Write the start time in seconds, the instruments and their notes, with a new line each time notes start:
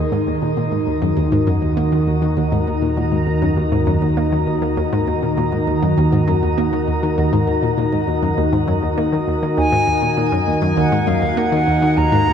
Already playing: synth drone D#2, analog synth pad D#3 D#4 G#4 A#4 C6
0.12 synth arpeggio sound G#2
0.27 synth arpeggio sound D#2
0.42 synth arpeggio sound A#2, analog synth pad F#4
0.57 synth arpeggio sound A#2
0.72 synth arpeggio sound G#2
0.87 synth arpeggio sound D#2
1.02 synth arpeggio sound F#2
1.17 synth arpeggio sound D#2
1.32 synth arpeggio sound G#2
1.44 synth arpeggio sound F#2, analog synth pad A#5
1.62 synth arpeggio sound D#2
1.77 synth arpeggio sound A#3
1.92 synth arpeggio sound D#3
2.07 synth arpeggio sound D#2
2.22 synth arpeggio sound D#3
2.37 synth arpeggio sound D#2
2.52 synth arpeggio sound G#2
2.67 synth arpeggio sound D#2
2.82 synth arpeggio sound A#2
2.97 synth arpeggio sound A#2
3.12 synth arpeggio sound G#2
3.27 synth arpeggio sound D#2
3.42 synth arpeggio sound F#2
3.57 synth arpeggio sound D#2
3.72 synth arpeggio sound G#2
3.87 synth arpeggio sound F#2
4.02 synth arpeggio sound D#2
4.17 synth arpeggio sound A#3
4.32 synth arpeggio sound D#3
4.47 synth arpeggio sound D#2
4.62 synth arpeggio sound D#3
4.77 synth arpeggio sound D#2
4.93 synth arpeggio sound G#2
5.07 synth arpeggio sound D#2
5.22 synth arpeggio sound A#2
5.37 synth arpeggio sound A#2
5.52 synth arpeggio sound G#2
5.68 synth arpeggio sound D#2
5.83 synth arpeggio sound F#2
5.98 synth arpeggio sound D#2
6.12 synth arpeggio sound G#2
6.28 synth arpeggio sound F#2
6.43 synth arpeggio sound D#2
6.58 synth arpeggio sound A#3
6.73 synth arpeggio sound D#3
6.88 synth arpeggio sound D#2
7.03 synth arpeggio sound D#3
7.18 synth arpeggio sound D#2
7.33 synth arpeggio sound G#2
7.48 synth arpeggio sound D#2
7.63 synth arpeggio sound A#2
7.78 synth arpeggio sound A#2
7.93 synth arpeggio sound G#2
8.08 synth arpeggio sound D#2
8.22 synth arpeggio sound F#2
8.38 synth arpeggio sound D#2
8.53 synth arpeggio sound G#2
8.68 synth arpeggio sound F#2
8.82 synth arpeggio sound D#2
8.98 synth arpeggio sound A#3
9.12 synth arpeggio sound D#3
9.28 synth arpeggio sound D#2
9.43 synth arpeggio sound D#3
9.57 synth drone D#2, synth arpeggio sound D#2, flute G#5
9.72 synth arpeggio sound G#2
9.87 synth arpeggio sound D#2
10.02 synth arpeggio sound A#2
10.17 synth arpeggio sound A#2
10.32 synth arpeggio sound F#2
10.47 synth arpeggio sound D#2
10.62 synth arpeggio sound F#2
10.77 synth arpeggio sound D#2, flute F#5
10.92 synth arpeggio sound G#2
11.07 synth arpeggio sound F#2, flute F5
11.22 synth arpeggio sound D#2
11.37 synth arpeggio sound A#3, flute F#5
11.52 synth arpeggio sound D#3
11.67 synth arpeggio sound D#2
11.81 synth arpeggio sound D#3, analog synth pad G#5
11.97 synth arpeggio sound D#2, flute A#5
12.12 synth arpeggio sound G#2
12.27 synth arpeggio sound D#2